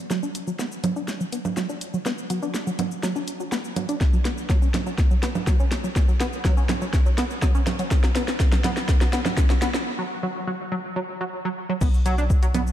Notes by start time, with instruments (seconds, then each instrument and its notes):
0.11 analog synth bass B1, synth arpeggio sound F#3, snare, shaker
0.23 synth arpeggio sound D4, shaker
0.35 closed hi-hat, shaker
0.47 synth arpeggio sound F#3, shaker
0.59 synth arpeggio sound B3, snare, shaker
0.72 shaker
0.84 synth arpeggio sound F#3, closed hi-hat, low conga, shaker
0.96 synth arpeggio sound D4, shaker
1.08 snare, shaker
1.21 synth arpeggio sound F#3, shaker
1.32 synth arpeggio sound B3, closed hi-hat, shaker
1.45 low conga, shaker
1.57 synth arpeggio sound F#3, snare, shaker
1.69 synth arpeggio sound D4, shaker
1.81 closed hi-hat, shaker
1.94 synth arpeggio sound F#3, shaker
2.06 analog synth bass B1, synth arpeggio sound B3, snare, shaker
2.18 shaker
2.30 synth arpeggio sound F#3, closed hi-hat, shaker
2.43 synth arpeggio sound D4, shaker
2.54 snare, shaker
2.67 synth arpeggio sound F#3, shaker
2.79 synth arpeggio sound B3, closed hi-hat, low conga, shaker
2.91 shaker
3.03 synth arpeggio sound F#3, snare, shaker
3.16 synth arpeggio sound D4, shaker
3.28 closed hi-hat, shaker
3.40 synth arpeggio sound F#3, shaker
3.52 synth arpeggio sound B3, snare, shaker
3.65 shaker
3.76 synth arpeggio sound F#3, closed hi-hat, low conga, shaker
3.89 synth arpeggio sound D4, closed hi-hat, shaker
4.01 analog synth bass A1, kick, snare, shaker
4.13 synth arpeggio sound F#3, shaker
4.25 synth arpeggio sound B3, snare, closed hi-hat, shaker
4.38 shaker
4.50 synth arpeggio sound F#3, kick, snare, shaker
4.62 synth arpeggio sound C#4, shaker
4.74 snare, closed hi-hat, low conga, shaker
4.87 synth arpeggio sound F#3, shaker
4.98 kick, snare, shaker
5.11 synth arpeggio sound F#3, shaker
5.23 synth arpeggio sound B3, snare, closed hi-hat, shaker
5.35 low conga, shaker
5.47 synth arpeggio sound F#3, kick, snare, shaker
5.60 synth arpeggio sound C#4, shaker
5.72 snare, closed hi-hat, shaker
5.84 synth arpeggio sound F#3, shaker
5.96 analog synth bass A1, kick, snare, shaker
6.08 synth arpeggio sound F#3, shaker
6.20 synth arpeggio sound B3, snare, closed hi-hat, shaker
6.33 shaker
6.45 synth arpeggio sound F#3, kick, snare, shaker
6.57 synth arpeggio sound C#4, shaker
6.69 snare, closed hi-hat, low conga, shaker
6.82 synth arpeggio sound F#3, shaker
6.94 kick, snare, shaker
7.06 synth arpeggio sound F#3, shaker
7.18 synth arpeggio sound B3, snare, closed hi-hat, shaker
7.30 shaker
7.42 synth arpeggio sound F#3, kick, snare, shaker
7.55 synth arpeggio sound C#4, shaker
7.67 snare, closed hi-hat, low conga, shaker
7.79 synth arpeggio sound F#3, closed hi-hat, shaker
7.91 kick, snare, shaker
8.04 synth arpeggio sound F#3, snare, shaker
8.15 synth arpeggio sound B3, snare, closed hi-hat, shaker
8.28 snare, shaker
8.40 kick, snare, shaker
8.52 synth arpeggio sound F#3, snare, shaker
8.64 synth arpeggio sound B3, snare, closed hi-hat, low conga, shaker
8.77 snare, shaker
8.89 kick, snare, shaker
9.01 synth arpeggio sound F#3, snare, shaker
9.13 synth arpeggio sound B3, snare, closed hi-hat, shaker
9.26 snare, low conga, shaker
9.37 kick, snare, shaker
9.50 synth arpeggio sound F#3, snare, shaker
9.62 synth arpeggio sound B3, snare, closed hi-hat, shaker
9.74 snare, shaker
9.99 synth arpeggio sound F#3
10.23 synth arpeggio sound F#3
10.47 synth arpeggio sound F#3
10.72 synth arpeggio sound F#3
10.96 synth arpeggio sound F#3
11.21 synth arpeggio sound F#3
11.45 synth arpeggio sound F#3
11.69 synth arpeggio sound F#3
11.81 analog synth bass B1, synth arpeggio sound B3, kick, crash, shaker
11.94 shaker
12.06 synth arpeggio sound F#3, closed hi-hat, shaker
12.18 synth arpeggio sound D4, shaker
12.30 kick, shaker
12.43 synth arpeggio sound F#3, closed hi-hat, shaker
12.54 synth arpeggio sound B3, closed hi-hat, low conga, shaker
12.67 shaker